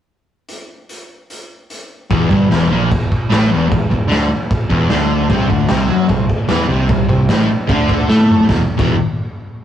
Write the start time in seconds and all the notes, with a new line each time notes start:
0.49 closed hi-hat
0.89 closed hi-hat
1.30 closed hi-hat
1.70 closed hi-hat
2.10 E1 E2, kick, crash
2.30 G1 G2, kick
2.50 E1 E2, snare, crash
2.69 A#1 A#2
2.90 E1 E2, kick, crash
3.12 kick
3.30 A1 A2, snare, crash
3.51 E1 E2
3.70 E1 E2, kick, crash
3.90 E1 E2, kick
4.08 D2 D3, snare, crash
4.51 kick, crash
4.69 E1 E2, kick
4.89 D2 D3, snare, crash
5.30 C2 C3, kick, crash
5.50 D2 D3, kick
5.69 C2 C3, snare, crash
5.89 F#2 F#3
6.08 C2 C3, kick, crash
6.29 kick
6.49 E2 E3, snare, crash
6.69 C2 C3
6.89 C2 C3, kick, crash
7.08 C2 C3, kick
7.29 A1 A2, snare, crash
7.67 D2 D3, kick, crash
7.89 kick
8.09 A2 A3, snare
8.20 high tom
8.30 mid tom
8.39 floor tom
8.47 E1 E2 B2 E3, kick, snare
8.77 E1 E2 B2 E3, kick, crash